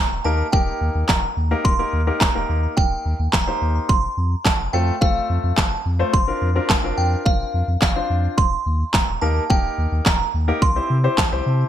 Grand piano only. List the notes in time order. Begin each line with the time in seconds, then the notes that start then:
0.25 A#3 D#4 G4 A#4
0.53 A#3 D#4 G4 A#4
1.51 A#3 D#4 G4 A#4
1.79 A#3 D#4 G4 A#4
2.07 A#3 D#4 G4 A#4
2.35 A#3 D#4 G4 A#4
3.47 A#3 D#4 G4 C5
4.73 A3 C4 F4 A4
5.01 A3 C4 F4 A4
5.99 A3 C4 F4 C5
6.27 C4 D4 F4 A#4
6.55 C4 D4 F4 A#4
6.84 C4 D4 F4 A#4
7.96 C4 D4 F4 C5
9.22 A#3 D#4 G4 A#4
9.50 A#3 D#4 G4 A#4
10.48 A#3 D#4 G4 A#4
10.76 C4 E4 G4 C5
11.04 C4 E4 G4 C5
11.32 C4 E4 G4 C5